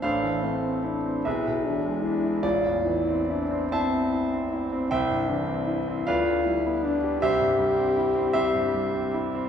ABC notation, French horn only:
X:1
M:6/8
L:1/8
Q:3/8=51
K:Am
V:1 name="French horn"
D C D E D E | F E D C3 | E D E F E D | G4- G z |]